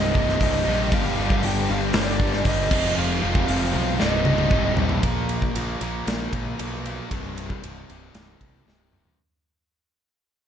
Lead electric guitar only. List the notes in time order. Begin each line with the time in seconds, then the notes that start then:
Already playing: D#5
0.41 D#5
0.92 F5
1.45 G5
1.70 F5
1.96 D5
2.48 D#5
2.97 F5
3.48 F5
4.01 D#5